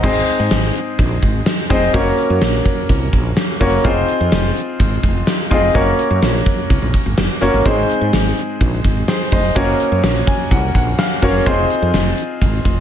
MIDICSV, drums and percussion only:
0, 0, Header, 1, 2, 480
1, 0, Start_track
1, 0, Tempo, 476190
1, 37, Time_signature, 4, 2, 24, 8
1, 12903, End_track
2, 0, Start_track
2, 0, Title_t, "Drums"
2, 36, Note_on_c, 9, 36, 124
2, 36, Note_on_c, 9, 49, 108
2, 39, Note_on_c, 9, 82, 76
2, 137, Note_off_c, 9, 36, 0
2, 137, Note_off_c, 9, 49, 0
2, 140, Note_off_c, 9, 82, 0
2, 160, Note_on_c, 9, 82, 55
2, 261, Note_off_c, 9, 82, 0
2, 276, Note_on_c, 9, 42, 79
2, 281, Note_on_c, 9, 82, 50
2, 376, Note_off_c, 9, 42, 0
2, 381, Note_off_c, 9, 82, 0
2, 402, Note_on_c, 9, 82, 45
2, 502, Note_off_c, 9, 82, 0
2, 512, Note_on_c, 9, 42, 94
2, 515, Note_on_c, 9, 38, 105
2, 517, Note_on_c, 9, 54, 71
2, 518, Note_on_c, 9, 82, 73
2, 613, Note_off_c, 9, 42, 0
2, 616, Note_off_c, 9, 38, 0
2, 618, Note_off_c, 9, 54, 0
2, 618, Note_off_c, 9, 82, 0
2, 641, Note_on_c, 9, 82, 53
2, 742, Note_off_c, 9, 82, 0
2, 758, Note_on_c, 9, 42, 80
2, 859, Note_off_c, 9, 42, 0
2, 879, Note_on_c, 9, 82, 51
2, 980, Note_off_c, 9, 82, 0
2, 996, Note_on_c, 9, 42, 89
2, 997, Note_on_c, 9, 36, 94
2, 1000, Note_on_c, 9, 82, 73
2, 1097, Note_off_c, 9, 42, 0
2, 1098, Note_off_c, 9, 36, 0
2, 1101, Note_off_c, 9, 82, 0
2, 1122, Note_on_c, 9, 82, 51
2, 1223, Note_off_c, 9, 82, 0
2, 1236, Note_on_c, 9, 36, 87
2, 1236, Note_on_c, 9, 42, 76
2, 1240, Note_on_c, 9, 82, 49
2, 1336, Note_off_c, 9, 36, 0
2, 1336, Note_off_c, 9, 42, 0
2, 1341, Note_off_c, 9, 82, 0
2, 1358, Note_on_c, 9, 82, 67
2, 1459, Note_off_c, 9, 82, 0
2, 1474, Note_on_c, 9, 38, 110
2, 1477, Note_on_c, 9, 42, 91
2, 1477, Note_on_c, 9, 54, 67
2, 1479, Note_on_c, 9, 82, 70
2, 1575, Note_off_c, 9, 38, 0
2, 1578, Note_off_c, 9, 42, 0
2, 1578, Note_off_c, 9, 54, 0
2, 1580, Note_off_c, 9, 82, 0
2, 1599, Note_on_c, 9, 82, 44
2, 1699, Note_off_c, 9, 82, 0
2, 1716, Note_on_c, 9, 36, 89
2, 1717, Note_on_c, 9, 46, 76
2, 1720, Note_on_c, 9, 82, 54
2, 1817, Note_off_c, 9, 36, 0
2, 1817, Note_off_c, 9, 46, 0
2, 1821, Note_off_c, 9, 82, 0
2, 1839, Note_on_c, 9, 82, 48
2, 1940, Note_off_c, 9, 82, 0
2, 1957, Note_on_c, 9, 36, 124
2, 1957, Note_on_c, 9, 42, 82
2, 1959, Note_on_c, 9, 82, 74
2, 2058, Note_off_c, 9, 36, 0
2, 2058, Note_off_c, 9, 42, 0
2, 2060, Note_off_c, 9, 82, 0
2, 2079, Note_on_c, 9, 82, 55
2, 2180, Note_off_c, 9, 82, 0
2, 2198, Note_on_c, 9, 42, 75
2, 2198, Note_on_c, 9, 82, 51
2, 2298, Note_off_c, 9, 42, 0
2, 2299, Note_off_c, 9, 82, 0
2, 2320, Note_on_c, 9, 82, 47
2, 2421, Note_off_c, 9, 82, 0
2, 2433, Note_on_c, 9, 42, 92
2, 2435, Note_on_c, 9, 38, 110
2, 2437, Note_on_c, 9, 54, 72
2, 2438, Note_on_c, 9, 82, 76
2, 2533, Note_off_c, 9, 42, 0
2, 2536, Note_off_c, 9, 38, 0
2, 2538, Note_off_c, 9, 54, 0
2, 2538, Note_off_c, 9, 82, 0
2, 2559, Note_on_c, 9, 82, 60
2, 2660, Note_off_c, 9, 82, 0
2, 2676, Note_on_c, 9, 36, 99
2, 2678, Note_on_c, 9, 42, 84
2, 2777, Note_off_c, 9, 36, 0
2, 2779, Note_off_c, 9, 42, 0
2, 2800, Note_on_c, 9, 82, 49
2, 2901, Note_off_c, 9, 82, 0
2, 2916, Note_on_c, 9, 42, 98
2, 2917, Note_on_c, 9, 36, 94
2, 2919, Note_on_c, 9, 82, 71
2, 3017, Note_off_c, 9, 42, 0
2, 3018, Note_off_c, 9, 36, 0
2, 3020, Note_off_c, 9, 82, 0
2, 3041, Note_on_c, 9, 82, 52
2, 3142, Note_off_c, 9, 82, 0
2, 3155, Note_on_c, 9, 42, 75
2, 3156, Note_on_c, 9, 36, 87
2, 3160, Note_on_c, 9, 82, 46
2, 3255, Note_off_c, 9, 42, 0
2, 3256, Note_off_c, 9, 36, 0
2, 3260, Note_off_c, 9, 82, 0
2, 3278, Note_on_c, 9, 82, 67
2, 3379, Note_off_c, 9, 82, 0
2, 3394, Note_on_c, 9, 38, 112
2, 3397, Note_on_c, 9, 42, 91
2, 3397, Note_on_c, 9, 54, 69
2, 3400, Note_on_c, 9, 82, 67
2, 3495, Note_off_c, 9, 38, 0
2, 3497, Note_off_c, 9, 54, 0
2, 3498, Note_off_c, 9, 42, 0
2, 3501, Note_off_c, 9, 82, 0
2, 3518, Note_on_c, 9, 82, 41
2, 3619, Note_off_c, 9, 82, 0
2, 3636, Note_on_c, 9, 36, 88
2, 3637, Note_on_c, 9, 46, 82
2, 3639, Note_on_c, 9, 82, 53
2, 3737, Note_off_c, 9, 36, 0
2, 3738, Note_off_c, 9, 46, 0
2, 3739, Note_off_c, 9, 82, 0
2, 3758, Note_on_c, 9, 82, 46
2, 3859, Note_off_c, 9, 82, 0
2, 3877, Note_on_c, 9, 36, 120
2, 3877, Note_on_c, 9, 42, 80
2, 3879, Note_on_c, 9, 82, 79
2, 3978, Note_off_c, 9, 36, 0
2, 3978, Note_off_c, 9, 42, 0
2, 3980, Note_off_c, 9, 82, 0
2, 3997, Note_on_c, 9, 82, 55
2, 4098, Note_off_c, 9, 82, 0
2, 4117, Note_on_c, 9, 42, 75
2, 4119, Note_on_c, 9, 82, 51
2, 4218, Note_off_c, 9, 42, 0
2, 4220, Note_off_c, 9, 82, 0
2, 4239, Note_on_c, 9, 82, 49
2, 4340, Note_off_c, 9, 82, 0
2, 4354, Note_on_c, 9, 42, 96
2, 4356, Note_on_c, 9, 38, 112
2, 4357, Note_on_c, 9, 82, 75
2, 4358, Note_on_c, 9, 54, 71
2, 4454, Note_off_c, 9, 42, 0
2, 4457, Note_off_c, 9, 38, 0
2, 4458, Note_off_c, 9, 82, 0
2, 4459, Note_off_c, 9, 54, 0
2, 4479, Note_on_c, 9, 82, 59
2, 4580, Note_off_c, 9, 82, 0
2, 4600, Note_on_c, 9, 42, 81
2, 4701, Note_off_c, 9, 42, 0
2, 4718, Note_on_c, 9, 82, 48
2, 4819, Note_off_c, 9, 82, 0
2, 4836, Note_on_c, 9, 42, 95
2, 4837, Note_on_c, 9, 36, 97
2, 4840, Note_on_c, 9, 82, 74
2, 4937, Note_off_c, 9, 36, 0
2, 4937, Note_off_c, 9, 42, 0
2, 4940, Note_off_c, 9, 82, 0
2, 4958, Note_on_c, 9, 82, 54
2, 5059, Note_off_c, 9, 82, 0
2, 5074, Note_on_c, 9, 42, 78
2, 5075, Note_on_c, 9, 36, 90
2, 5077, Note_on_c, 9, 82, 48
2, 5175, Note_off_c, 9, 42, 0
2, 5176, Note_off_c, 9, 36, 0
2, 5178, Note_off_c, 9, 82, 0
2, 5195, Note_on_c, 9, 82, 64
2, 5296, Note_off_c, 9, 82, 0
2, 5313, Note_on_c, 9, 38, 110
2, 5316, Note_on_c, 9, 42, 92
2, 5316, Note_on_c, 9, 54, 69
2, 5316, Note_on_c, 9, 82, 70
2, 5414, Note_off_c, 9, 38, 0
2, 5416, Note_off_c, 9, 54, 0
2, 5417, Note_off_c, 9, 42, 0
2, 5417, Note_off_c, 9, 82, 0
2, 5436, Note_on_c, 9, 82, 42
2, 5537, Note_off_c, 9, 82, 0
2, 5555, Note_on_c, 9, 36, 91
2, 5555, Note_on_c, 9, 46, 78
2, 5557, Note_on_c, 9, 82, 55
2, 5656, Note_off_c, 9, 36, 0
2, 5656, Note_off_c, 9, 46, 0
2, 5658, Note_off_c, 9, 82, 0
2, 5678, Note_on_c, 9, 82, 44
2, 5779, Note_off_c, 9, 82, 0
2, 5796, Note_on_c, 9, 36, 121
2, 5796, Note_on_c, 9, 42, 79
2, 5797, Note_on_c, 9, 82, 74
2, 5897, Note_off_c, 9, 36, 0
2, 5897, Note_off_c, 9, 42, 0
2, 5898, Note_off_c, 9, 82, 0
2, 5916, Note_on_c, 9, 82, 54
2, 6017, Note_off_c, 9, 82, 0
2, 6037, Note_on_c, 9, 42, 76
2, 6038, Note_on_c, 9, 82, 49
2, 6138, Note_off_c, 9, 42, 0
2, 6139, Note_off_c, 9, 82, 0
2, 6158, Note_on_c, 9, 82, 48
2, 6259, Note_off_c, 9, 82, 0
2, 6272, Note_on_c, 9, 42, 97
2, 6275, Note_on_c, 9, 38, 113
2, 6276, Note_on_c, 9, 82, 75
2, 6277, Note_on_c, 9, 54, 69
2, 6373, Note_off_c, 9, 42, 0
2, 6376, Note_off_c, 9, 38, 0
2, 6377, Note_off_c, 9, 82, 0
2, 6378, Note_off_c, 9, 54, 0
2, 6396, Note_on_c, 9, 82, 58
2, 6497, Note_off_c, 9, 82, 0
2, 6515, Note_on_c, 9, 36, 98
2, 6516, Note_on_c, 9, 42, 82
2, 6615, Note_off_c, 9, 36, 0
2, 6617, Note_off_c, 9, 42, 0
2, 6635, Note_on_c, 9, 82, 47
2, 6735, Note_off_c, 9, 82, 0
2, 6754, Note_on_c, 9, 82, 73
2, 6755, Note_on_c, 9, 42, 91
2, 6756, Note_on_c, 9, 36, 101
2, 6855, Note_off_c, 9, 82, 0
2, 6856, Note_off_c, 9, 36, 0
2, 6856, Note_off_c, 9, 42, 0
2, 6874, Note_on_c, 9, 82, 54
2, 6974, Note_off_c, 9, 82, 0
2, 6994, Note_on_c, 9, 82, 47
2, 6995, Note_on_c, 9, 36, 88
2, 6996, Note_on_c, 9, 42, 80
2, 7095, Note_off_c, 9, 82, 0
2, 7096, Note_off_c, 9, 36, 0
2, 7097, Note_off_c, 9, 42, 0
2, 7114, Note_on_c, 9, 82, 62
2, 7215, Note_off_c, 9, 82, 0
2, 7234, Note_on_c, 9, 38, 112
2, 7235, Note_on_c, 9, 82, 74
2, 7236, Note_on_c, 9, 42, 89
2, 7236, Note_on_c, 9, 54, 69
2, 7334, Note_off_c, 9, 38, 0
2, 7336, Note_off_c, 9, 82, 0
2, 7337, Note_off_c, 9, 42, 0
2, 7337, Note_off_c, 9, 54, 0
2, 7355, Note_on_c, 9, 82, 44
2, 7456, Note_off_c, 9, 82, 0
2, 7475, Note_on_c, 9, 46, 84
2, 7476, Note_on_c, 9, 82, 53
2, 7576, Note_off_c, 9, 46, 0
2, 7576, Note_off_c, 9, 82, 0
2, 7594, Note_on_c, 9, 82, 49
2, 7695, Note_off_c, 9, 82, 0
2, 7715, Note_on_c, 9, 82, 72
2, 7716, Note_on_c, 9, 36, 119
2, 7717, Note_on_c, 9, 42, 83
2, 7816, Note_off_c, 9, 82, 0
2, 7817, Note_off_c, 9, 36, 0
2, 7818, Note_off_c, 9, 42, 0
2, 7835, Note_on_c, 9, 82, 56
2, 7936, Note_off_c, 9, 82, 0
2, 7956, Note_on_c, 9, 82, 49
2, 7958, Note_on_c, 9, 42, 79
2, 8057, Note_off_c, 9, 82, 0
2, 8059, Note_off_c, 9, 42, 0
2, 8078, Note_on_c, 9, 82, 46
2, 8179, Note_off_c, 9, 82, 0
2, 8194, Note_on_c, 9, 82, 76
2, 8195, Note_on_c, 9, 42, 91
2, 8198, Note_on_c, 9, 38, 109
2, 8200, Note_on_c, 9, 54, 71
2, 8295, Note_off_c, 9, 82, 0
2, 8296, Note_off_c, 9, 42, 0
2, 8299, Note_off_c, 9, 38, 0
2, 8301, Note_off_c, 9, 54, 0
2, 8318, Note_on_c, 9, 82, 55
2, 8418, Note_off_c, 9, 82, 0
2, 8440, Note_on_c, 9, 42, 78
2, 8540, Note_off_c, 9, 42, 0
2, 8557, Note_on_c, 9, 82, 50
2, 8658, Note_off_c, 9, 82, 0
2, 8677, Note_on_c, 9, 36, 99
2, 8677, Note_on_c, 9, 82, 69
2, 8678, Note_on_c, 9, 42, 92
2, 8777, Note_off_c, 9, 82, 0
2, 8778, Note_off_c, 9, 36, 0
2, 8778, Note_off_c, 9, 42, 0
2, 8800, Note_on_c, 9, 82, 53
2, 8901, Note_off_c, 9, 82, 0
2, 8916, Note_on_c, 9, 36, 89
2, 8917, Note_on_c, 9, 42, 79
2, 8917, Note_on_c, 9, 82, 50
2, 9017, Note_off_c, 9, 36, 0
2, 9018, Note_off_c, 9, 42, 0
2, 9018, Note_off_c, 9, 82, 0
2, 9035, Note_on_c, 9, 82, 65
2, 9136, Note_off_c, 9, 82, 0
2, 9154, Note_on_c, 9, 38, 116
2, 9157, Note_on_c, 9, 42, 91
2, 9157, Note_on_c, 9, 54, 66
2, 9158, Note_on_c, 9, 82, 68
2, 9255, Note_off_c, 9, 38, 0
2, 9258, Note_off_c, 9, 42, 0
2, 9258, Note_off_c, 9, 54, 0
2, 9259, Note_off_c, 9, 82, 0
2, 9278, Note_on_c, 9, 82, 43
2, 9379, Note_off_c, 9, 82, 0
2, 9396, Note_on_c, 9, 36, 91
2, 9397, Note_on_c, 9, 46, 82
2, 9398, Note_on_c, 9, 82, 52
2, 9497, Note_off_c, 9, 36, 0
2, 9497, Note_off_c, 9, 46, 0
2, 9499, Note_off_c, 9, 82, 0
2, 9517, Note_on_c, 9, 82, 47
2, 9618, Note_off_c, 9, 82, 0
2, 9637, Note_on_c, 9, 36, 125
2, 9637, Note_on_c, 9, 82, 77
2, 9638, Note_on_c, 9, 42, 83
2, 9738, Note_off_c, 9, 36, 0
2, 9738, Note_off_c, 9, 82, 0
2, 9739, Note_off_c, 9, 42, 0
2, 9758, Note_on_c, 9, 82, 56
2, 9859, Note_off_c, 9, 82, 0
2, 9877, Note_on_c, 9, 82, 48
2, 9878, Note_on_c, 9, 42, 78
2, 9978, Note_off_c, 9, 82, 0
2, 9979, Note_off_c, 9, 42, 0
2, 9998, Note_on_c, 9, 82, 45
2, 10099, Note_off_c, 9, 82, 0
2, 10115, Note_on_c, 9, 42, 89
2, 10116, Note_on_c, 9, 82, 75
2, 10117, Note_on_c, 9, 38, 114
2, 10119, Note_on_c, 9, 54, 68
2, 10215, Note_off_c, 9, 42, 0
2, 10216, Note_off_c, 9, 82, 0
2, 10218, Note_off_c, 9, 38, 0
2, 10220, Note_off_c, 9, 54, 0
2, 10238, Note_on_c, 9, 82, 56
2, 10338, Note_off_c, 9, 82, 0
2, 10356, Note_on_c, 9, 36, 105
2, 10359, Note_on_c, 9, 42, 89
2, 10457, Note_off_c, 9, 36, 0
2, 10460, Note_off_c, 9, 42, 0
2, 10476, Note_on_c, 9, 82, 50
2, 10577, Note_off_c, 9, 82, 0
2, 10595, Note_on_c, 9, 42, 95
2, 10597, Note_on_c, 9, 36, 101
2, 10598, Note_on_c, 9, 82, 77
2, 10696, Note_off_c, 9, 42, 0
2, 10697, Note_off_c, 9, 36, 0
2, 10698, Note_off_c, 9, 82, 0
2, 10720, Note_on_c, 9, 82, 52
2, 10820, Note_off_c, 9, 82, 0
2, 10835, Note_on_c, 9, 36, 90
2, 10835, Note_on_c, 9, 42, 80
2, 10837, Note_on_c, 9, 82, 47
2, 10936, Note_off_c, 9, 36, 0
2, 10936, Note_off_c, 9, 42, 0
2, 10938, Note_off_c, 9, 82, 0
2, 10957, Note_on_c, 9, 82, 62
2, 11057, Note_off_c, 9, 82, 0
2, 11074, Note_on_c, 9, 38, 110
2, 11077, Note_on_c, 9, 42, 91
2, 11077, Note_on_c, 9, 54, 66
2, 11078, Note_on_c, 9, 82, 69
2, 11175, Note_off_c, 9, 38, 0
2, 11177, Note_off_c, 9, 54, 0
2, 11178, Note_off_c, 9, 42, 0
2, 11179, Note_off_c, 9, 82, 0
2, 11197, Note_on_c, 9, 82, 43
2, 11298, Note_off_c, 9, 82, 0
2, 11315, Note_on_c, 9, 36, 89
2, 11315, Note_on_c, 9, 46, 82
2, 11319, Note_on_c, 9, 82, 52
2, 11416, Note_off_c, 9, 36, 0
2, 11416, Note_off_c, 9, 46, 0
2, 11420, Note_off_c, 9, 82, 0
2, 11438, Note_on_c, 9, 82, 48
2, 11539, Note_off_c, 9, 82, 0
2, 11556, Note_on_c, 9, 36, 117
2, 11556, Note_on_c, 9, 42, 79
2, 11559, Note_on_c, 9, 82, 78
2, 11657, Note_off_c, 9, 36, 0
2, 11657, Note_off_c, 9, 42, 0
2, 11660, Note_off_c, 9, 82, 0
2, 11679, Note_on_c, 9, 82, 56
2, 11780, Note_off_c, 9, 82, 0
2, 11797, Note_on_c, 9, 42, 76
2, 11798, Note_on_c, 9, 82, 53
2, 11898, Note_off_c, 9, 42, 0
2, 11899, Note_off_c, 9, 82, 0
2, 11919, Note_on_c, 9, 82, 43
2, 12019, Note_off_c, 9, 82, 0
2, 12033, Note_on_c, 9, 42, 94
2, 12035, Note_on_c, 9, 82, 76
2, 12036, Note_on_c, 9, 38, 117
2, 12038, Note_on_c, 9, 54, 66
2, 12134, Note_off_c, 9, 42, 0
2, 12136, Note_off_c, 9, 82, 0
2, 12137, Note_off_c, 9, 38, 0
2, 12138, Note_off_c, 9, 54, 0
2, 12157, Note_on_c, 9, 82, 54
2, 12258, Note_off_c, 9, 82, 0
2, 12277, Note_on_c, 9, 42, 82
2, 12378, Note_off_c, 9, 42, 0
2, 12396, Note_on_c, 9, 82, 49
2, 12496, Note_off_c, 9, 82, 0
2, 12515, Note_on_c, 9, 36, 96
2, 12515, Note_on_c, 9, 42, 96
2, 12515, Note_on_c, 9, 82, 73
2, 12616, Note_off_c, 9, 36, 0
2, 12616, Note_off_c, 9, 42, 0
2, 12616, Note_off_c, 9, 82, 0
2, 12637, Note_on_c, 9, 82, 51
2, 12738, Note_off_c, 9, 82, 0
2, 12754, Note_on_c, 9, 36, 86
2, 12754, Note_on_c, 9, 42, 74
2, 12757, Note_on_c, 9, 82, 48
2, 12854, Note_off_c, 9, 42, 0
2, 12855, Note_off_c, 9, 36, 0
2, 12858, Note_off_c, 9, 82, 0
2, 12903, End_track
0, 0, End_of_file